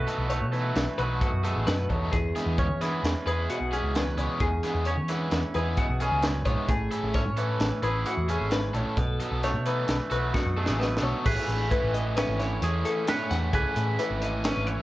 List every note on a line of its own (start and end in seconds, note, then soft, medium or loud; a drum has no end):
0.00 0.54 B2 medium
0.00 0.53 E3 medium
0.00 0.29 A3 medium
0.00 0.99 F#4 medium
0.00 0.29 A4 medium
0.00 2.62 B4 medium
0.07 0.38 F#3 medium
0.07 0.38 B3 medium
0.07 0.37 D#4 medium
0.07 0.37 A4 medium
0.07 closed hi-hat medium
0.18 0.43 B1 loud
0.30 1.43 A3 medium
0.30 0.53 C#5 medium
0.30 closed hi-hat medium
0.41 0.72 B2 medium
0.52 2.81 E3 medium
0.52 0.83 F#3 medium
0.52 0.83 B3 medium
0.52 0.83 D#4 medium
0.52 0.82 A4 medium
0.52 0.97 B4 medium
0.52 closed hi-hat medium
0.76 0.86 B1 medium
0.76 snare loud
0.76 closed hi-hat medium
0.98 1.19 B1 medium
0.98 1.29 F#3 medium
0.98 1.29 B3 medium
0.98 1.28 D#4 medium
0.98 2.16 F#4 soft
0.98 1.28 A4 medium
0.98 1.21 B4 medium
0.98 closed hi-hat soft
1.21 1.66 B2 medium
1.21 1.44 F#4 medium
1.21 kick loud
1.21 closed hi-hat medium
1.33 1.53 F#2 medium
1.43 1.74 F#3 medium
1.43 2.13 A3 medium
1.43 1.74 B3 medium
1.43 1.74 D#4 medium
1.43 1.67 G#4 medium
1.43 1.74 A4 medium
1.43 closed hi-hat medium
1.56 1.66 A1 medium
1.67 1.87 F#2 medium
1.67 2.13 B2 medium
1.67 1.90 B4 medium
1.67 snare loud
1.67 closed hi-hat medium
1.89 2.10 E2 medium
1.89 2.13 F#3 medium
1.89 2.13 B3 medium
1.89 2.13 D#4 medium
1.89 2.12 A4 medium
1.89 2.13 C#5 medium
1.89 kick medium
1.89 closed hi-hat medium
2.12 2.33 E2 medium
2.12 3.95 E2 medium
2.12 2.58 G#4 medium
2.12 kick medium
2.12 closed hi-hat medium
2.35 2.66 G#3 medium
2.35 2.66 B3 medium
2.35 2.66 E4 medium
2.35 2.65 G#4 medium
2.35 snare soft
2.35 closed hi-hat medium
2.46 2.71 E2 medium
2.58 3.73 C#4 medium
2.58 2.81 C#5 medium
2.58 kick medium
2.58 closed hi-hat medium
2.69 2.99 E3 medium
2.81 5.09 E3 medium
2.81 3.11 G#3 medium
2.81 3.11 B3 medium
2.81 3.11 E4 medium
2.81 3.11 G#4 medium
2.81 3.26 B4 medium
2.81 snare soft
2.81 closed hi-hat medium
3.03 3.14 E2 medium
3.03 snare loud
3.03 closed hi-hat medium
3.26 3.46 E2 medium
3.26 3.57 G#3 medium
3.26 3.57 B3 medium
3.26 3.56 E4 medium
3.26 3.56 G#4 medium
3.26 5.55 G#4 soft
3.26 3.50 B4 medium
3.26 closed hi-hat medium
3.50 4.41 B2 medium
3.50 3.73 F#4 medium
3.50 closed hi-hat medium
3.60 3.81 B1 medium
3.72 4.02 G#3 medium
3.72 4.02 B3 medium
3.72 4.87 C#4 medium
3.72 4.02 E4 medium
3.72 4.02 G#4 medium
3.72 3.96 G#4 medium
3.72 closed hi-hat medium
3.83 4.13 C#2 medium
3.95 4.40 E2 medium
3.95 4.19 B4 medium
3.95 snare loud
3.95 closed hi-hat medium
4.17 4.28 C#2 medium
4.17 4.48 G#3 medium
4.17 4.48 B3 medium
4.17 4.48 E4 medium
4.17 4.47 G#4 medium
4.17 4.41 C#5 medium
4.17 closed hi-hat medium
4.40 4.61 E2 medium
4.40 6.23 E2 medium
4.40 4.87 G#4 medium
4.40 kick loud
4.40 closed hi-hat medium
4.63 4.94 G#3 medium
4.63 4.94 B3 medium
4.63 4.93 E4 medium
4.63 4.93 G#4 medium
4.63 snare soft
4.63 closed hi-hat medium
4.75 4.98 E2 medium
4.85 6.01 C#4 medium
4.85 5.09 C#5 medium
4.85 closed hi-hat medium
4.97 5.27 E3 medium
5.08 7.37 E3 medium
5.08 5.39 G#3 medium
5.08 5.39 B3 medium
5.08 5.39 E4 medium
5.08 5.39 G#4 medium
5.08 5.54 B4 medium
5.08 snare soft
5.08 closed hi-hat medium
5.31 5.42 E2 medium
5.31 snare medium
5.31 closed hi-hat medium
5.54 5.75 E2 medium
5.54 5.85 G#3 medium
5.54 5.85 B3 medium
5.54 5.85 E4 medium
5.54 5.84 G#4 medium
5.54 6.67 G#4 soft
5.54 5.78 B4 medium
5.54 closed hi-hat medium
5.77 6.69 B2 medium
5.77 6.01 F#4 medium
5.77 kick loud
5.77 closed hi-hat medium
5.89 6.09 B1 medium
6.00 6.31 G#3 medium
6.00 6.30 B3 medium
6.00 6.67 C#4 medium
6.00 6.30 E4 medium
6.00 6.30 G#4 medium
6.00 6.23 G#4 medium
6.00 closed hi-hat medium
6.12 6.42 C#2 medium
6.23 6.45 F#2 medium
6.23 6.45 B4 medium
6.23 snare loud
6.23 closed hi-hat medium
6.45 6.56 A#1 medium
6.45 6.68 G#2 medium
6.45 6.69 G#3 medium
6.45 6.69 B3 medium
6.45 6.69 E4 medium
6.45 6.69 G#4 medium
6.45 6.69 C#5 medium
6.45 kick medium
6.45 closed hi-hat medium
6.68 6.89 A1 medium
6.68 8.51 A2 medium
6.68 7.15 G#4 medium
6.68 kick loud
6.68 closed hi-hat medium
6.91 7.22 A3 medium
6.91 7.22 C#4 medium
6.91 7.21 E4 medium
6.91 7.21 A4 medium
6.91 closed hi-hat medium
7.03 7.27 A1 medium
7.14 8.29 C#4 medium
7.14 7.38 C#5 medium
7.14 kick medium
7.14 snare soft
7.14 closed hi-hat medium
7.26 7.56 A2 medium
7.37 8.05 E3 medium
7.37 7.68 A3 medium
7.37 7.67 C#4 medium
7.37 7.67 E4 medium
7.37 7.67 A4 medium
7.37 7.82 B4 medium
7.37 closed hi-hat medium
7.60 7.70 A1 medium
7.60 snare loud
7.60 closed hi-hat medium
7.83 8.03 A1 medium
7.83 8.13 A3 medium
7.83 8.13 C#4 medium
7.83 8.13 E4 medium
7.83 8.95 G#4 soft
7.83 8.13 A4 medium
7.83 8.06 B4 medium
7.83 closed hi-hat soft
8.06 8.97 E3 medium
8.06 8.29 F#4 medium
8.06 closed hi-hat medium
8.17 8.37 E2 medium
8.29 8.59 A3 medium
8.29 8.59 C#4 medium
8.29 8.95 C#4 medium
8.29 8.59 E4 medium
8.29 8.52 G#4 medium
8.29 8.58 A4 medium
8.29 closed hi-hat medium
8.40 8.70 G#1 medium
8.51 8.74 G#2 medium
8.51 8.75 B4 medium
8.51 snare loud
8.51 closed hi-hat medium
8.74 8.84 A#1 medium
8.74 8.98 A2 medium
8.74 8.98 A3 medium
8.74 8.98 C#4 medium
8.74 8.97 E4 medium
8.74 8.97 A4 medium
8.74 8.98 C#5 medium
8.74 closed hi-hat medium
8.97 9.17 B1 medium
8.97 9.66 B2 medium
8.97 9.43 A4 medium
8.97 kick loud
8.97 closed hi-hat medium
9.20 9.50 F#3 medium
9.20 9.50 B3 medium
9.20 9.50 D#4 medium
9.20 9.50 A4 medium
9.20 closed hi-hat medium
9.31 9.55 B1 medium
9.43 10.57 A3 medium
9.43 9.66 C#5 medium
9.43 snare soft
9.43 closed hi-hat medium
9.54 9.84 B2 medium
9.66 11.70 E3 medium
9.66 9.96 F#3 medium
9.66 9.96 B3 medium
9.66 9.96 D#4 medium
9.66 9.96 A4 medium
9.66 10.11 B4 medium
9.66 closed hi-hat medium
9.88 9.99 B1 medium
9.88 snare medium
9.88 closed hi-hat medium
10.10 10.32 B1 medium
10.10 10.41 F#3 medium
10.10 10.41 B3 medium
10.10 10.41 D#4 medium
10.10 11.23 F#4 soft
10.10 10.41 A4 loud
10.10 10.35 B4 medium
10.10 closed hi-hat medium
10.34 10.78 B2 medium
10.34 10.57 F#4 medium
10.34 kick loud
10.34 snare medium
10.45 10.66 F#2 medium
10.57 10.87 F#3 medium
10.57 12.18 A3 medium
10.57 10.87 B3 medium
10.57 10.87 D#4 medium
10.57 10.80 G#4 medium
10.57 10.87 A4 medium
10.66 10.99 A1 medium
10.66 snare medium
10.79 11.25 B2 medium
10.79 11.03 B4 medium
10.79 snare medium
10.97 snare medium
11.02 11.12 B1 medium
11.02 11.26 F#3 medium
11.02 11.26 B3 medium
11.02 11.26 D#4 medium
11.02 11.25 A4 medium
11.02 11.26 C#5 medium
11.25 11.36 A1 medium
11.25 11.70 A2 medium
11.25 11.71 E3 medium
11.25 11.51 A3 medium
11.25 11.49 C#4 medium
11.25 11.48 E4 medium
11.25 11.71 G#4 medium
11.25 13.09 B4 medium
11.25 kick loud
11.25 crash loud
11.48 11.68 A1 medium
11.48 11.71 A3 soft
11.48 11.72 C#4 medium
11.48 11.73 E4 medium
11.48 snare soft
11.48 closed hi-hat medium
11.70 13.06 A2 medium
11.70 12.62 E3 medium
11.70 12.39 E3 medium
11.70 11.96 A3 medium
11.70 11.95 C#4 medium
11.70 11.93 E4 medium
11.70 11.94 B4 medium
11.70 kick medium
11.70 closed hi-hat medium
11.83 12.23 A1 medium
11.93 12.62 A3 medium
11.93 12.64 C#4 medium
11.93 12.65 E4 medium
11.93 12.17 D#5 medium
11.93 closed hi-hat medium
12.17 13.58 C#4 medium
12.17 12.40 B4 medium
12.17 snare loud
12.17 closed hi-hat medium
12.28 12.58 G#1 medium
12.39 14.00 E3 medium
12.39 12.85 C#5 medium
12.39 snare soft
12.39 closed hi-hat medium
12.62 12.83 E2 medium
12.62 13.08 E3 medium
12.62 12.86 A3 medium
12.62 12.86 C#4 medium
12.62 12.84 E4 medium
12.62 14.82 G#4 medium
12.62 closed hi-hat medium
12.85 13.07 A3 medium
12.85 13.09 C#4 medium
12.85 13.10 E4 medium
12.85 13.08 A4 medium
12.85 closed hi-hat medium
13.07 13.51 A2 medium
13.07 13.53 E3 medium
13.07 13.32 A3 medium
13.07 13.31 C#4 medium
13.07 13.29 E4 medium
13.07 13.54 B4 medium
13.07 13.31 C#5 medium
13.07 snare loud
13.07 closed hi-hat loud
13.30 13.51 E2 medium
13.30 13.53 A3 medium
13.30 13.54 C#4 medium
13.30 13.55 E4 medium
13.30 13.54 F#5 medium
13.30 snare soft
13.30 closed hi-hat medium
13.52 13.64 C#2 medium
13.52 13.97 A2 loud
13.52 13.99 E3 medium
13.52 13.77 A3 medium
13.52 13.77 C#4 loud
13.52 13.75 E4 loud
13.52 13.99 G#4 medium
13.52 14.82 B4 medium
13.52 kick loud
13.52 closed hi-hat medium
13.75 13.97 A2 medium
13.75 13.99 A3 medium
13.75 14.01 C#4 medium
13.75 14.01 E4 medium
13.75 closed hi-hat medium
13.98 14.44 A2 medium
13.98 14.82 E3 medium
13.98 14.67 E3 medium
13.98 14.23 A3 medium
13.98 14.23 C#4 loud
13.98 14.21 E4 loud
13.98 14.21 B4 medium
13.98 closed hi-hat medium
14.11 14.51 G#1 loud
14.21 14.82 A3 medium
14.21 14.82 C#4 medium
14.21 14.82 E4 medium
14.21 14.45 D#5 medium
14.21 closed hi-hat medium
14.44 14.82 C#4 medium
14.44 14.67 B4 medium
14.44 snare loud
14.44 closed hi-hat medium
14.57 14.76 G#1 medium
14.67 14.82 E3 medium
14.67 14.82 C#5 medium
14.67 closed hi-hat medium